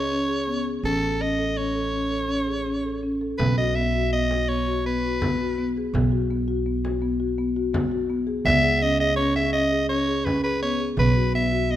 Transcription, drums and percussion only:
3.39 frame drum medium
4.31 frame drum soft
5.22 frame drum medium
5.76 frame drum soft
5.95 frame drum medium
6.85 frame drum soft
7.04 frame drum soft
7.74 frame drum medium
8.28 frame drum soft
8.46 frame drum medium
9.36 frame drum soft
10.27 frame drum medium
10.80 frame drum soft
10.97 frame drum medium
11.70 frame drum soft

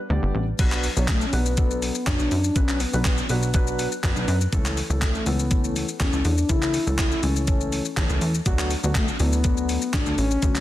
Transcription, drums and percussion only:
0.59 kick loud
0.59 closed hi-hat medium
0.59 crash loud
0.59 shaker medium
0.72 clap medium
0.72 shaker medium
0.84 open hi-hat medium
0.84 shaker medium
0.97 shaker medium
1.08 kick loud
1.08 snare loud
1.08 clap loud
1.08 closed hi-hat medium
1.08 shaker medium
1.21 shaker medium
1.33 open hi-hat medium
1.33 shaker medium
1.46 shaker medium
1.57 kick loud
1.57 closed hi-hat medium
1.57 shaker medium
1.71 shaker medium
1.82 open hi-hat medium
1.82 shaker medium
1.95 shaker medium
2.07 kick loud
2.07 snare medium
2.07 clap loud
2.07 closed hi-hat medium
2.07 shaker medium
2.20 shaker medium
2.31 open hi-hat medium
2.31 shaker soft
2.44 shaker medium
2.56 kick loud
2.56 closed hi-hat medium
2.56 shaker medium
2.69 clap medium
2.69 shaker medium
2.80 open hi-hat medium
2.80 shaker medium
2.93 shaker medium
3.05 kick loud
3.05 snare loud
3.05 clap loud
3.05 closed hi-hat medium
3.05 shaker medium
3.18 shaker medium
3.29 open hi-hat medium
3.29 shaker medium
3.43 shaker medium
3.54 kick loud
3.54 closed hi-hat medium
3.54 shaker medium
3.67 shaker medium
3.79 open hi-hat medium
3.79 shaker medium
3.92 shaker medium
4.04 kick loud
4.04 snare medium
4.04 clap loud
4.04 closed hi-hat medium
4.04 shaker medium
4.16 shaker medium
4.28 open hi-hat medium
4.28 shaker soft
4.41 shaker medium
4.53 kick loud
4.53 closed hi-hat medium
4.53 shaker medium
4.66 clap medium
4.66 shaker medium
4.77 open hi-hat medium
4.77 shaker medium
4.91 shaker medium
5.02 kick loud
5.02 snare loud
5.02 clap loud
5.02 closed hi-hat medium
5.02 shaker medium
5.15 shaker medium
5.26 open hi-hat medium
5.26 shaker medium
5.40 shaker medium
5.51 kick loud
5.51 closed hi-hat medium
5.51 shaker medium
5.64 shaker medium
5.76 open hi-hat medium
5.76 shaker medium
5.89 shaker medium
6.00 kick loud
6.00 snare loud
6.00 clap loud
6.00 closed hi-hat medium
6.00 shaker medium
6.13 shaker medium
6.25 open hi-hat medium
6.25 shaker medium
6.38 shaker medium
6.49 kick loud
6.49 closed hi-hat medium
6.49 shaker medium
6.62 clap medium
6.62 shaker medium
6.74 open hi-hat medium
6.74 shaker medium
6.87 shaker medium
6.99 kick loud
6.99 snare loud
6.99 clap loud
6.99 closed hi-hat medium
6.99 shaker medium
7.12 shaker medium
7.23 open hi-hat medium
7.23 shaker medium
7.36 shaker medium
7.47 kick loud
7.47 closed hi-hat medium
7.47 shaker medium
7.61 shaker medium
7.72 open hi-hat medium
7.72 shaker medium
7.85 shaker medium
7.97 kick loud
7.97 snare medium
7.97 clap loud
7.97 closed hi-hat medium
7.97 shaker medium
8.10 shaker medium
8.21 open hi-hat medium
8.21 shaker soft
8.35 shaker medium
8.46 kick loud
8.46 closed hi-hat medium
8.46 shaker medium
8.59 clap medium
8.59 shaker medium
8.71 open hi-hat medium
8.71 shaker medium
8.84 shaker medium
8.95 kick loud
8.95 snare loud
8.95 clap loud
8.95 closed hi-hat medium
8.95 shaker medium
9.08 shaker medium
9.20 open hi-hat medium
9.20 shaker medium
9.33 shaker medium
9.44 kick loud
9.44 closed hi-hat medium
9.44 shaker medium
9.57 shaker medium
9.69 open hi-hat medium
9.69 shaker medium
9.82 shaker medium
9.93 kick loud
9.93 snare medium
9.93 clap loud
9.93 closed hi-hat medium
9.93 shaker medium
10.06 shaker medium
10.18 open hi-hat medium
10.18 shaker medium
10.31 shaker medium
10.42 kick loud
10.42 closed hi-hat medium
10.42 shaker medium
10.55 clap medium
10.55 shaker medium

